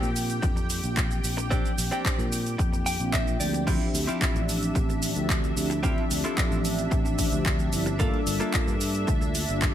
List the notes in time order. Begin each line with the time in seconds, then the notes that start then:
Already playing: F3 A#3 C4 D4 G4 G5
0.02 A#2, closed hi-hat, cabasa
0.16 open hi-hat, cabasa
0.30 closed hi-hat, cabasa
0.42 F2, muted clean electric guitar stroke, kick, closed hi-hat, cabasa
0.56 muted clean electric guitar stroke, closed hi-hat, cabasa
0.70 open hi-hat, cabasa
0.83 A#1 F3 A#3 C4 D4 F4, closed hi-hat, cabasa
0.97 kick, clap, closed hi-hat, cabasa
1.11 closed hi-hat, cabasa
1.23 A#1 F3 A#3 C4 D4 G4, open hi-hat, cabasa
1.37 muted clean electric guitar stroke, closed hi-hat, cabasa
1.50 F3 C4 D4 G4, kick, closed hi-hat, cabasa
1.66 closed hi-hat, cabasa
1.78 A#1, open hi-hat, cabasa
1.91 C4 D4 G4, closed hi-hat, cabasa
2.05 kick, clap, closed hi-hat, cabasa
2.18 A#2, closed hi-hat, cabasa
2.32 open hi-hat, cabasa
2.47 closed hi-hat, cabasa
2.58 F2, muted clean electric guitar stroke, kick, closed hi-hat, cabasa
2.73 muted clean electric guitar stroke, closed hi-hat, cabasa
2.86 G5, open hi-hat, cabasa
2.99 A#1 F3 A#3 C4 D4 F4, closed hi-hat, cabasa
3.13 E5, kick, clap, closed hi-hat, cabasa
3.28 closed hi-hat, cabasa
3.40 D2 F3 A#3 C4 D4 D5, open hi-hat, cabasa
3.53 muted clean electric guitar stroke, closed hi-hat, cabasa
3.66 F3 C4 D4 E4 F4 G4 E5, kick, closed hi-hat, crash, cabasa
3.81 closed hi-hat
3.93 D2, open hi-hat, cabasa
4.07 C4 E4 F4 G4, closed hi-hat, cabasa
4.21 kick, clap, closed hi-hat, cabasa
4.35 A1, closed hi-hat, cabasa
4.49 open hi-hat, cabasa
4.63 closed hi-hat, cabasa
4.75 A1, muted clean electric guitar stroke, kick, closed hi-hat, cabasa
4.89 muted clean electric guitar stroke, closed hi-hat, cabasa
5.03 open hi-hat, cabasa
5.15 D2 F3 C4 D4 G4 E5, closed hi-hat, cabasa
5.29 kick, clap, closed hi-hat, cabasa
5.44 closed hi-hat, cabasa
5.56 D2 F3 C4 D4 E4 G4, open hi-hat, cabasa
5.70 muted clean electric guitar stroke, closed hi-hat, cabasa
5.82 F3 C4 D4 E4 F4 G4 E5, kick, closed hi-hat, cabasa
5.98 closed hi-hat
6.10 D2, open hi-hat, cabasa
6.24 C4 E4 F4 A4, closed hi-hat, cabasa
6.37 kick, clap, closed hi-hat, cabasa
6.51 A1, closed hi-hat, cabasa
6.65 open hi-hat, cabasa
6.79 closed hi-hat, cabasa
6.91 A1, muted clean electric guitar stroke, kick, closed hi-hat, cabasa
7.05 muted clean electric guitar stroke, closed hi-hat, cabasa
7.18 kick, open hi-hat, cabasa
7.32 D2 F3 C4 D4 G4 E5, closed hi-hat, cabasa
7.46 kick, clap, closed hi-hat, cabasa
7.60 closed hi-hat, cabasa
7.72 G1 F3 C4 D4 E4 G4, open hi-hat, cabasa
7.86 muted clean electric guitar stroke, closed hi-hat, cabasa
7.99 G3 A#3 D4 F4 A4, kick, closed hi-hat, cabasa
8.14 closed hi-hat
8.26 G1, open hi-hat, cabasa
8.40 A#3 F4 A4, closed hi-hat, cabasa
8.54 kick, clap, closed hi-hat, cabasa
8.67 G2, closed hi-hat, cabasa
8.81 open hi-hat, cabasa
8.95 closed hi-hat, cabasa
9.07 D2, muted clean electric guitar stroke, kick, closed hi-hat, cabasa
9.21 muted clean electric guitar stroke, closed hi-hat, cabasa
9.35 open hi-hat, cabasa
9.48 G1 G3 A#3 D4 F4 G4, closed hi-hat, cabasa
9.62 kick, clap, closed hi-hat, cabasa